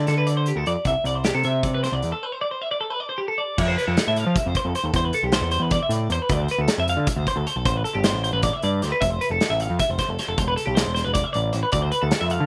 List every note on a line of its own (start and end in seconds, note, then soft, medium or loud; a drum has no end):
0.07 0.51 D3 medium
0.07 0.17 A4 medium
0.07 snare soft
0.07 closed hi-hat medium
0.18 0.27 B4 medium
0.27 0.37 D5 medium
0.27 closed hi-hat medium
0.37 0.47 C5 medium
0.46 0.57 G4 medium
0.46 closed hi-hat medium
0.56 0.65 D2 medium
0.56 0.66 A4 medium
0.66 0.75 F2 medium
0.66 0.86 D5 medium
0.66 closed hi-hat medium
0.85 0.94 C2 medium
0.85 1.06 E5 medium
0.85 kick medium
0.85 closed hi-hat medium
1.04 1.31 C2 medium
1.04 1.15 D5 medium
1.04 closed hi-hat soft
1.15 1.25 C5 medium
1.24 1.34 G4 medium
1.24 snare loud
1.24 closed hi-hat medium
1.34 1.43 C3 medium
1.34 1.44 A4 medium
1.43 1.88 C3 medium
1.43 1.64 E5 medium
1.43 closed hi-hat medium
1.63 1.73 D5 medium
1.63 kick medium
1.63 closed hi-hat medium
1.75 1.83 B4 medium
1.84 1.93 C5 medium
1.84 snare soft
1.84 closed hi-hat medium
1.92 2.01 C2 medium
1.92 2.12 D5 medium
2.02 2.12 E2 medium
2.02 closed hi-hat medium
2.12 2.23 A4 medium
2.23 2.32 B4 medium
2.32 2.41 C5 medium
2.41 2.51 D5 medium
2.51 2.62 C5 medium
2.62 2.71 E5 medium
2.71 2.80 D5 medium
2.81 2.90 A4 medium
2.90 3.00 B4 medium
3.00 3.09 D5 medium
3.09 3.19 C5 medium
3.18 3.28 G4 medium
3.28 3.38 A4 medium
3.38 3.59 D5 medium
3.58 3.75 F2 loud
3.58 3.68 E5 medium
3.58 kick loud
3.58 crash medium
3.68 3.77 C5 medium
3.77 3.87 B4 medium
3.77 closed hi-hat medium
3.87 3.96 F2 medium
3.87 4.07 A4 medium
3.97 snare loud
3.97 closed hi-hat medium
4.07 4.24 A2 medium
4.07 4.18 E5 medium
4.16 4.38 F5 medium
4.16 closed hi-hat medium
4.26 4.35 F3 medium
4.36 4.47 E5 medium
4.36 kick loud
4.36 closed hi-hat medium
4.46 4.54 F2 medium
4.46 4.56 C5 medium
4.55 4.66 C5 medium
4.55 kick medium
4.55 closed hi-hat medium
4.65 4.73 F2 medium
4.65 4.75 A4 medium
4.75 4.86 C5 medium
4.75 closed hi-hat medium
4.83 4.92 D#2 medium
4.83 4.95 A4 medium
4.93 5.11 E2 medium
4.93 5.05 C5 medium
4.93 kick loud
4.93 closed hi-hat medium
5.05 5.14 B4 medium
5.13 5.24 A4 medium
5.13 closed hi-hat medium
5.23 5.40 B1 loud
5.23 5.33 G4 medium
5.32 5.50 C5 medium
5.32 snare loud
5.32 closed hi-hat medium
5.41 5.59 E2 medium
5.51 5.62 C5 medium
5.51 closed hi-hat medium
5.60 5.78 E2 medium
5.60 5.72 B4 medium
5.71 5.82 D5 medium
5.71 kick loud
5.71 closed hi-hat medium
5.83 5.92 E5 medium
5.89 6.07 A2 medium
5.89 6.11 D5 medium
5.89 closed hi-hat medium
6.09 6.18 E2 medium
6.09 6.22 C5 medium
6.09 closed hi-hat medium
6.22 6.32 B4 medium
6.29 6.47 D2 loud
6.29 6.42 D5 medium
6.29 kick loud
6.29 closed hi-hat medium
6.42 6.50 C5 medium
6.48 6.61 B4 medium
6.48 closed hi-hat medium
6.58 6.67 D2 medium
6.58 6.79 A4 medium
6.68 snare medium
6.68 closed hi-hat medium
6.78 6.95 F2 medium
6.78 6.89 E5 medium
6.88 7.09 F5 medium
6.88 closed hi-hat medium
6.97 7.06 D3 medium
7.07 7.18 E5 medium
7.07 kick loud
7.07 closed hi-hat medium
7.16 7.25 D2 medium
7.16 7.27 C5 medium
7.27 7.37 C5 medium
7.27 kick medium
7.27 closed hi-hat medium
7.36 7.45 D2 medium
7.36 7.47 A4 medium
7.47 7.56 C5 medium
7.47 closed hi-hat medium
7.56 7.64 B1 medium
7.56 7.66 A4 medium
7.65 7.83 A1 medium
7.65 7.76 C5 medium
7.65 kick loud
7.65 closed hi-hat medium
7.76 7.84 B4 medium
7.84 7.94 A4 medium
7.84 closed hi-hat medium
7.95 8.12 G1 loud
7.95 8.04 G4 medium
8.04 8.23 C5 medium
8.04 snare loud
8.04 closed hi-hat medium
8.13 8.31 A1 medium
8.24 8.33 C5 medium
8.24 closed hi-hat medium
8.33 8.50 A1 medium
8.33 8.43 B4 medium
8.43 8.53 D5 medium
8.43 kick loud
8.43 snare soft
8.43 closed hi-hat medium
8.53 8.63 E5 medium
8.62 8.80 G2 medium
8.62 8.82 D5 medium
8.62 closed hi-hat medium
8.82 8.91 D2 medium
8.82 8.92 C5 medium
8.82 snare soft
8.82 closed hi-hat medium
8.92 9.02 B4 medium
9.01 9.19 F1 loud
9.01 9.11 E5 medium
9.01 kick medium
9.01 closed hi-hat medium
9.11 9.21 C5 medium
9.21 9.31 B4 medium
9.21 closed hi-hat medium
9.30 9.39 F1 loud
9.30 9.50 A4 medium
9.41 snare loud
9.41 closed hi-hat medium
9.50 9.67 A1 medium
9.50 9.61 E5 medium
9.60 9.80 F5 medium
9.60 closed hi-hat medium
9.70 9.78 F2 medium
9.79 9.91 E5 medium
9.79 kick medium
9.79 closed hi-hat medium
9.89 9.98 F1 medium
9.89 9.98 C5 medium
9.98 10.10 C5 medium
9.98 kick medium
9.98 snare soft
9.98 closed hi-hat medium
10.08 10.17 F1 medium
10.08 10.19 A4 medium
10.19 10.28 C5 medium
10.19 snare soft
10.19 closed hi-hat medium
10.28 10.37 F1 medium
10.28 10.38 A4 medium
10.38 10.55 E1 loud
10.38 10.47 C5 medium
10.38 kick loud
10.38 closed hi-hat medium
10.48 10.56 B4 medium
10.56 10.66 A4 medium
10.56 closed hi-hat medium
10.66 10.84 B1 loud
10.66 10.76 G4 medium
10.75 10.93 C5 medium
10.75 snare loud
10.75 closed hi-hat medium
10.86 11.03 E1 medium
10.95 11.04 C5 medium
10.95 snare soft
10.95 closed hi-hat medium
11.05 11.23 E1 medium
11.05 11.13 B4 medium
11.14 11.24 D5 medium
11.14 kick loud
11.14 closed hi-hat medium
11.24 11.33 E5 medium
11.33 11.52 A1 medium
11.33 11.53 D5 medium
11.33 closed hi-hat medium
11.53 11.63 A1 medium
11.53 11.62 C5 medium
11.53 closed hi-hat medium
11.63 11.72 B4 medium
11.72 11.90 D2 loud
11.72 11.82 D5 medium
11.72 kick medium
11.72 closed hi-hat medium
11.82 11.91 C5 medium
11.92 12.02 B4 medium
11.92 closed hi-hat medium
12.02 12.11 D2 loud
12.02 12.21 A4 medium
12.11 snare loud
12.11 closed hi-hat medium
12.21 12.39 F2 medium
12.21 12.31 E5 medium
12.30 12.46 F5 medium
12.30 closed hi-hat medium
12.40 12.46 D3 medium